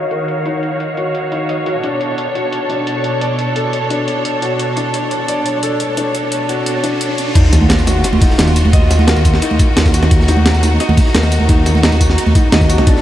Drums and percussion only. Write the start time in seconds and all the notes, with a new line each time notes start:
0.11 closed hi-hat
0.28 closed hi-hat
0.46 closed hi-hat
0.63 closed hi-hat
0.80 closed hi-hat
0.97 closed hi-hat
1.15 closed hi-hat
1.32 closed hi-hat
1.49 closed hi-hat
1.66 closed hi-hat
1.83 closed hi-hat
2.01 closed hi-hat
2.18 closed hi-hat
2.35 closed hi-hat
2.52 closed hi-hat
2.70 closed hi-hat
2.87 closed hi-hat
3.04 closed hi-hat
3.21 closed hi-hat
3.39 closed hi-hat
3.56 closed hi-hat
3.73 closed hi-hat
3.90 closed hi-hat
4.08 closed hi-hat
4.25 closed hi-hat
4.42 closed hi-hat
4.59 closed hi-hat
4.77 closed hi-hat
4.94 closed hi-hat
5.11 closed hi-hat
5.28 closed hi-hat
5.46 closed hi-hat
5.63 closed hi-hat
5.80 closed hi-hat
5.97 closed hi-hat
6.15 closed hi-hat
6.32 closed hi-hat
6.49 closed hi-hat
6.66 closed hi-hat
6.84 closed hi-hat
7.01 closed hi-hat
7.18 closed hi-hat
7.35 kick, closed hi-hat, crash, ride
7.44 snare
7.53 snare, closed hi-hat, ride, tambourine
7.62 high conga
7.69 snare, closed hi-hat, ride
7.79 tambourine
7.87 snare, closed hi-hat, ride, tambourine, high conga
8.04 snare, closed hi-hat, ride
8.13 high conga
8.20 kick, closed hi-hat, open hi-hat, tambourine, muted conga
8.30 snare
8.38 snare, closed hi-hat, ride, high conga
8.47 snare, ride, tambourine
8.56 closed hi-hat, ride, tambourine
8.65 high conga
8.73 kick, closed hi-hat, ride
8.91 snare, closed hi-hat, ride, tambourine
8.99 snare, high conga
9.07 snare, closed hi-hat, ride
9.16 ride, tambourine, muted conga
9.25 kick, closed hi-hat, ride, tambourine
9.34 snare
9.42 closed hi-hat, ride
9.51 high conga
9.59 kick, closed hi-hat, ride, tambourine
9.76 snare, closed hi-hat, ride, high conga
9.80 snare, ride
9.85 kick, snare, ride, tambourine
9.94 closed hi-hat, ride, tambourine
10.03 snare, muted conga, high conga
10.11 kick, closed hi-hat, ride
10.20 snare
10.28 snare, closed hi-hat, ride, tambourine
10.37 high conga
10.46 snare, closed hi-hat, ride
10.54 tambourine
10.63 snare, closed hi-hat, ride, tambourine, high conga
10.80 snare, closed hi-hat, ride
10.89 high conga
10.97 kick, closed hi-hat, open hi-hat, tambourine, muted conga
11.06 snare
11.15 snare, closed hi-hat, ride, high conga
11.22 snare, ride, tambourine
11.32 closed hi-hat, ride, tambourine
11.40 high conga
11.49 kick, closed hi-hat, ride
11.66 snare, closed hi-hat, ride, tambourine
11.75 snare, high conga
11.83 snare, closed hi-hat, ride
11.92 ride, tambourine, muted conga
12.01 kick, closed hi-hat, ride, tambourine
12.09 snare
12.18 closed hi-hat, ride
12.27 high conga
12.35 kick, closed hi-hat, ride, tambourine
12.52 snare, closed hi-hat, ride, high conga
12.61 kick, tambourine
12.69 closed hi-hat, ride, tambourine
12.78 snare, muted conga, high conga
12.87 kick, closed hi-hat, ride
12.96 snare